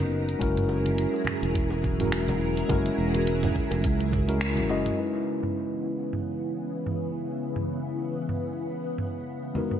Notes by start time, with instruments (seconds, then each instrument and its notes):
Already playing: fretless electric bass F#1, string machine B3 D#4 A#4, tine electric piano B3 C#4 D#4 F#4 A#4
0.00 closed hi-hat, shaker
0.12 high bongo
0.29 closed hi-hat, shaker
0.39 fretless electric bass F#1, string machine F#3 E4 G#4 A#4, tine electric piano G#3 C#4 E4 F#4 A#4, kick, closed hi-hat, high conga, shaker
0.57 closed hi-hat, mid tom, shaker
0.69 high bongo
0.86 closed hi-hat, high conga, shaker
0.98 closed hi-hat, shaker
1.14 high bongo, shaker
1.25 finger snap, mid tom, high conga
1.43 fretless electric bass E1, closed hi-hat, shaker
1.55 kick, closed hi-hat, shaker
1.70 high bongo, shaker
1.83 kick, high conga
1.99 tine electric piano G#3 C#4 E4 F#4 A#4, closed hi-hat, mid tom, shaker
2.12 finger snap, closed hi-hat, high bongo, shaker
2.28 closed hi-hat, high conga, low conga, shaker
2.57 closed hi-hat, shaker
2.68 fretless electric bass F#1, tine electric piano G#3 C#4 E4 F#4 A#4, kick, closed hi-hat, mid tom, high bongo, high conga, shaker
2.86 closed hi-hat, shaker
2.98 fretless electric bass E1
3.14 closed hi-hat, high bongo, high conga, shaker
3.27 closed hi-hat, shaker
3.43 closed hi-hat, mid tom, low conga, shaker
3.55 kick, high conga
3.71 fretless electric bass E1, closed hi-hat, high bongo, shaker
3.84 fretless electric bass C#2, kick, closed hi-hat, shaker
4.01 closed hi-hat, shaker
4.11 kick, mid tom, high bongo, high conga
4.28 tine electric piano G#3 C#4 E4 F#4 A#4, closed hi-hat, shaker
4.41 finger snap, closed hi-hat, shaker
4.56 closed hi-hat, high conga, shaker
4.69 fretless electric bass F#1, tine electric piano G#3 C#4 E4 F#4 D#5, high bongo
4.86 closed hi-hat, mid tom, shaker
4.96 string machine C#3 E3 B3, tine electric piano G#3 C#4 D#4 E4 B4
5.43 mid tom
6.13 mid tom
6.86 mid tom
7.56 mid tom
8.29 mid tom
8.98 mid tom
9.54 string machine G#2 F#3, tine electric piano G#3 B3 D#4 F#4 A#4, high conga
9.71 mid tom